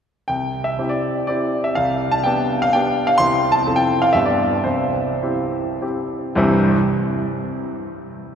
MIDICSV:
0, 0, Header, 1, 2, 480
1, 0, Start_track
1, 0, Key_signature, 0, "major"
1, 0, Tempo, 498753
1, 281, Time_signature, 3, 2, 24, 8
1, 1245, Tempo, 477707
1, 4125, Tempo, 515021
1, 4605, Tempo, 566572
1, 6045, Tempo, 506757
1, 7916, End_track
2, 0, Start_track
2, 0, Title_t, "Grand piano"
2, 0, Program_c, 0, 0
2, 266, Note_on_c, 0, 79, 68
2, 280, Note_on_c, 0, 36, 44
2, 448, Control_c, 0, 64, 127
2, 618, Note_on_c, 0, 76, 65
2, 632, Note_off_c, 0, 79, 0
2, 747, Note_off_c, 0, 36, 0
2, 755, Note_on_c, 0, 60, 39
2, 763, Note_on_c, 0, 64, 39
2, 763, Note_on_c, 0, 67, 42
2, 776, Control_c, 0, 64, 0
2, 859, Note_on_c, 0, 74, 66
2, 874, Note_off_c, 0, 76, 0
2, 1202, Note_off_c, 0, 60, 0
2, 1206, Note_off_c, 0, 64, 0
2, 1206, Note_off_c, 0, 67, 0
2, 1210, Note_off_c, 0, 74, 0
2, 1224, Note_on_c, 0, 74, 71
2, 1236, Note_on_c, 0, 60, 34
2, 1245, Note_on_c, 0, 64, 33
2, 1247, Note_on_c, 0, 67, 37
2, 1593, Note_off_c, 0, 74, 0
2, 1593, Note_on_c, 0, 76, 65
2, 1676, Note_off_c, 0, 60, 0
2, 1681, Note_off_c, 0, 64, 0
2, 1682, Note_off_c, 0, 67, 0
2, 1707, Note_on_c, 0, 77, 80
2, 1715, Note_off_c, 0, 76, 0
2, 1724, Note_on_c, 0, 36, 49
2, 1888, Control_c, 0, 64, 127
2, 2070, Note_on_c, 0, 81, 84
2, 2076, Note_off_c, 0, 77, 0
2, 2191, Note_on_c, 0, 79, 75
2, 2198, Note_off_c, 0, 36, 0
2, 2204, Note_off_c, 0, 81, 0
2, 2207, Note_on_c, 0, 59, 45
2, 2215, Note_on_c, 0, 62, 47
2, 2215, Note_on_c, 0, 67, 48
2, 2574, Note_off_c, 0, 79, 0
2, 2577, Note_on_c, 0, 77, 90
2, 2660, Note_off_c, 0, 59, 0
2, 2664, Note_off_c, 0, 62, 0
2, 2664, Note_off_c, 0, 67, 0
2, 2688, Note_on_c, 0, 79, 84
2, 2699, Note_off_c, 0, 77, 0
2, 2702, Note_on_c, 0, 59, 44
2, 2705, Note_on_c, 0, 62, 49
2, 2709, Note_on_c, 0, 67, 48
2, 2710, Control_c, 0, 64, 0
2, 3029, Note_on_c, 0, 77, 85
2, 3039, Note_off_c, 0, 79, 0
2, 3116, Note_off_c, 0, 59, 0
2, 3118, Note_off_c, 0, 62, 0
2, 3120, Note_off_c, 0, 67, 0
2, 3137, Note_on_c, 0, 84, 108
2, 3148, Note_off_c, 0, 77, 0
2, 3156, Note_on_c, 0, 36, 59
2, 3156, Note_on_c, 0, 60, 42
2, 3162, Note_on_c, 0, 64, 42
2, 3163, Note_on_c, 0, 67, 38
2, 3355, Control_c, 0, 64, 127
2, 3479, Note_on_c, 0, 81, 90
2, 3491, Note_off_c, 0, 84, 0
2, 3585, Note_off_c, 0, 60, 0
2, 3587, Note_off_c, 0, 64, 0
2, 3588, Note_off_c, 0, 67, 0
2, 3611, Note_off_c, 0, 36, 0
2, 3625, Note_on_c, 0, 41, 56
2, 3626, Note_on_c, 0, 60, 41
2, 3628, Note_on_c, 0, 64, 38
2, 3636, Control_c, 0, 64, 0
2, 3637, Note_on_c, 0, 69, 42
2, 3722, Note_on_c, 0, 79, 86
2, 3740, Note_off_c, 0, 81, 0
2, 3836, Control_c, 0, 64, 127
2, 3981, Note_on_c, 0, 77, 84
2, 3986, Note_off_c, 0, 79, 0
2, 4086, Note_off_c, 0, 60, 0
2, 4087, Note_off_c, 0, 64, 0
2, 4091, Note_off_c, 0, 69, 0
2, 4092, Note_on_c, 0, 76, 80
2, 4107, Note_on_c, 0, 59, 38
2, 4108, Note_on_c, 0, 43, 53
2, 4111, Note_off_c, 0, 41, 0
2, 4113, Note_on_c, 0, 62, 35
2, 4116, Note_off_c, 0, 77, 0
2, 4120, Note_on_c, 0, 67, 40
2, 4136, Control_c, 0, 64, 0
2, 4214, Note_on_c, 0, 74, 70
2, 4227, Note_off_c, 0, 76, 0
2, 4299, Control_c, 0, 64, 127
2, 4560, Note_off_c, 0, 59, 0
2, 4562, Note_off_c, 0, 62, 0
2, 4565, Note_off_c, 0, 67, 0
2, 4570, Note_on_c, 0, 72, 67
2, 4583, Note_off_c, 0, 43, 0
2, 4586, Note_on_c, 0, 36, 47
2, 4591, Note_off_c, 0, 74, 0
2, 4612, Control_c, 0, 64, 0
2, 4805, Control_c, 0, 64, 127
2, 5063, Note_off_c, 0, 36, 0
2, 5072, Note_on_c, 0, 60, 41
2, 5074, Note_on_c, 0, 64, 41
2, 5080, Note_on_c, 0, 67, 38
2, 5543, Note_off_c, 0, 60, 0
2, 5544, Note_off_c, 0, 64, 0
2, 5546, Note_off_c, 0, 67, 0
2, 5572, Note_on_c, 0, 60, 32
2, 5575, Note_on_c, 0, 64, 33
2, 5576, Note_on_c, 0, 67, 41
2, 5594, Control_c, 0, 64, 0
2, 5806, Note_off_c, 0, 72, 0
2, 6005, Note_off_c, 0, 60, 0
2, 6007, Note_off_c, 0, 64, 0
2, 6008, Note_off_c, 0, 67, 0
2, 6028, Note_on_c, 0, 36, 80
2, 6033, Note_on_c, 0, 43, 66
2, 6036, Note_on_c, 0, 52, 73
2, 6036, Note_on_c, 0, 55, 70
2, 6040, Note_on_c, 0, 60, 65
2, 6044, Note_on_c, 0, 64, 75
2, 6205, Control_c, 0, 64, 127
2, 6302, Note_off_c, 0, 36, 0
2, 6305, Note_off_c, 0, 43, 0
2, 6307, Note_off_c, 0, 52, 0
2, 6307, Note_off_c, 0, 55, 0
2, 6309, Note_off_c, 0, 60, 0
2, 6312, Note_off_c, 0, 64, 0
2, 6399, Control_c, 0, 64, 0
2, 7916, End_track
0, 0, End_of_file